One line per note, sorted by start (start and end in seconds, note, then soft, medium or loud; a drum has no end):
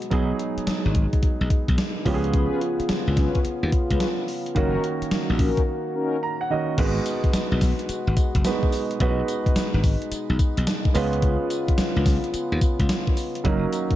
0.00 2.02 B2 medium
0.00 2.02 G#3 medium
0.00 closed hi-hat soft
0.10 0.32 B1 medium
0.10 2.01 F#3 medium
0.10 2.02 B3 medium
0.10 2.04 D#4 medium
0.10 2.02 D#4 medium
0.10 2.03 G#4 medium
0.10 kick loud
0.10 closed hi-hat medium
0.39 closed hi-hat medium
0.57 muted slap bass stroke soft
0.57 closed hi-hat medium
0.67 muted slap bass stroke soft
0.67 snare loud
0.67 closed hi-hat medium
0.85 1.06 G#1 medium
0.95 kick loud
0.95 closed hi-hat medium
1.13 kick medium
1.13 closed hi-hat medium
1.23 muted slap bass stroke soft
1.23 kick loud
1.23 closed hi-hat medium
1.41 1.48 B1 medium
1.50 kick loud
1.50 closed hi-hat medium
1.68 1.76 B1 loud
1.68 kick loud
1.68 closed hi-hat medium
1.78 snare loud
1.78 closed hi-hat medium
2.05 2.46 C#2 medium
2.05 4.53 C#3 medium
2.05 4.24 F3 medium
2.05 4.53 B3 medium
2.05 4.24 B3 medium
2.05 4.25 C#4 medium
2.05 4.53 F4 medium
2.05 2.15 G4 medium
2.05 kick medium
2.05 open hi-hat medium
2.14 4.28 G#4 medium
2.24 closed hi-hat soft
2.33 2.60 C#4 medium
2.33 2.60 F4 medium
2.33 2.60 G#4 medium
2.33 2.60 B4 loud
2.33 kick loud
2.33 closed hi-hat medium
2.61 closed hi-hat medium
2.80 muted slap bass stroke soft
2.80 closed hi-hat soft
2.89 muted slap bass stroke soft
2.89 snare loud
2.89 closed hi-hat medium
3.07 3.28 C#2 medium
3.17 3.39 C#4 medium
3.17 3.39 F4 medium
3.17 3.39 G#4 medium
3.17 3.39 B4 medium
3.17 kick loud
3.17 snare medium
3.17 closed hi-hat medium
3.35 kick medium
3.35 closed hi-hat soft
3.45 muted slap bass stroke soft
3.45 closed hi-hat medium
3.63 3.70 D#2 medium
3.72 kick loud
3.72 closed hi-hat medium
3.90 3.98 C#2 loud
3.90 4.07 C#4 medium
3.90 4.07 F4 medium
3.90 4.07 G#4 medium
3.90 4.08 B4 medium
3.90 kick loud
3.90 closed hi-hat medium
4.00 snare loud
4.00 closed hi-hat medium
4.28 open hi-hat medium
4.46 closed hi-hat soft
4.55 4.76 F#1 loud
4.55 6.46 D#3 medium
4.55 6.61 D#3 medium
4.55 6.46 A#3 medium
4.55 6.61 A#3 medium
4.55 4.82 C#4 medium
4.55 6.47 C#4 medium
4.55 4.82 D#4 medium
4.55 6.61 F#4 medium
4.55 4.82 F#4 medium
4.55 6.47 F#4 medium
4.55 4.82 A#4 loud
4.55 kick loud
4.55 closed hi-hat medium
4.84 closed hi-hat medium
5.02 muted slap bass stroke soft
5.02 closed hi-hat medium
5.11 muted slap bass stroke soft
5.11 snare loud
5.11 closed hi-hat medium
5.30 5.50 A#1 medium
5.39 5.61 C#4 medium
5.39 5.61 D#4 medium
5.39 5.61 F#4 medium
5.39 5.61 A#4 medium
5.39 kick loud
5.39 open hi-hat medium
5.57 kick medium
5.57 closed hi-hat soft
5.95 6.17 C#4 medium
5.95 6.17 D#4 medium
5.95 6.17 F#4 medium
5.95 6.17 A#4 medium
6.23 6.40 A#5 medium
6.41 6.50 F#5 medium
6.50 6.78 D#3 medium
6.50 6.78 A#3 medium
6.50 6.78 C#4 soft
6.50 6.78 F#4 medium
6.50 6.76 D#5 medium
6.78 6.98 G#1 loud
6.78 10.91 B2 medium
6.78 8.41 G#3 medium
6.78 10.91 G#3 medium
6.78 8.41 B3 medium
6.78 8.42 D#4 medium
6.78 8.98 F#4 medium
6.78 8.42 F#4 medium
6.78 8.42 B4 medium
6.78 kick loud
6.78 closed hi-hat medium
6.78 crash loud
7.06 closed hi-hat medium
7.06 tambourine medium
7.24 muted slap bass stroke medium
7.24 kick medium
7.24 closed hi-hat soft
7.33 muted slap bass stroke soft
7.33 snare loud
7.33 closed hi-hat medium
7.33 tambourine loud
7.52 7.72 B1 medium
7.61 kick loud
7.61 snare medium
7.61 open hi-hat medium
7.61 tambourine medium
7.79 closed hi-hat medium
7.89 muted slap bass stroke soft
7.89 closed hi-hat medium
7.89 tambourine medium
8.07 8.14 G#1 loud
8.17 kick loud
8.17 closed hi-hat medium
8.17 tambourine medium
8.35 8.42 F#1 loud
8.35 kick loud
8.35 closed hi-hat medium
8.44 8.98 G#3 medium
8.44 8.99 B3 medium
8.44 9.01 D#4 medium
8.44 9.00 F#4 medium
8.44 9.00 B4 medium
8.44 snare loud
8.44 closed hi-hat medium
8.44 tambourine loud
8.63 kick medium
8.72 open hi-hat medium
8.72 tambourine medium
8.91 closed hi-hat medium
9.00 9.21 B1 loud
9.00 10.91 G#3 medium
9.00 10.91 B3 medium
9.00 9.09 C#4 medium
9.00 10.93 D#4 medium
9.00 10.91 F#4 medium
9.00 10.92 B4 medium
9.00 kick loud
9.00 closed hi-hat medium
9.07 10.94 D#4 medium
9.28 closed hi-hat medium
9.28 tambourine medium
9.46 muted slap bass stroke soft
9.46 kick loud
9.46 closed hi-hat medium
9.56 muted slap bass stroke soft
9.56 snare loud
9.56 closed hi-hat medium
9.56 tambourine loud
9.74 9.94 G#1 medium
9.84 kick loud
9.84 open hi-hat medium
9.84 tambourine medium
10.02 closed hi-hat medium
10.12 muted slap bass stroke soft
10.12 closed hi-hat medium
10.12 tambourine medium
10.30 10.37 B1 medium
10.39 kick loud
10.39 closed hi-hat medium
10.39 tambourine medium
10.57 10.65 B1 loud
10.57 closed hi-hat medium
10.67 snare loud
10.67 closed hi-hat medium
10.67 tambourine medium
10.85 kick medium
10.94 11.36 C#2 loud
10.94 13.43 C#3 medium
10.94 13.13 G#3 medium
10.94 13.13 B3 medium
10.94 13.42 B3 medium
10.94 13.13 C#4 medium
10.94 13.42 F4 medium
10.94 13.13 F4 medium
10.94 13.14 B4 medium
10.94 open hi-hat medium
10.94 tambourine medium
11.13 closed hi-hat soft
11.22 kick loud
11.22 closed hi-hat medium
11.50 closed hi-hat medium
11.50 tambourine medium
11.68 muted slap bass stroke medium
11.68 kick loud
11.68 closed hi-hat medium
11.78 muted slap bass stroke medium
11.78 snare loud
11.78 closed hi-hat medium
11.78 tambourine loud
11.96 12.17 C#2 medium
12.06 kick loud
12.06 snare medium
12.06 open hi-hat medium
12.06 tambourine medium
12.24 closed hi-hat medium
12.34 muted slap bass stroke medium
12.34 closed hi-hat medium
12.34 tambourine medium
12.52 12.59 D#2 loud
12.61 kick loud
12.61 closed hi-hat medium
12.61 tambourine medium
12.80 12.87 C#2 medium
12.80 kick loud
12.80 closed hi-hat medium
12.89 snare loud
12.89 closed hi-hat medium
12.89 tambourine medium
13.07 kick medium
13.17 open hi-hat medium
13.17 tambourine medium
13.35 closed hi-hat medium
13.44 13.65 F#1 loud
13.44 13.96 D#3 medium
13.44 13.96 F#3 medium
13.44 13.96 A#3 medium
13.44 13.96 C#4 medium
13.44 13.96 D#4 medium
13.44 13.96 F#4 medium
13.44 13.96 A#4 medium
13.44 kick loud
13.44 closed hi-hat medium
13.73 closed hi-hat medium
13.73 tambourine medium
13.91 muted slap bass stroke soft
13.91 kick medium
13.91 closed hi-hat medium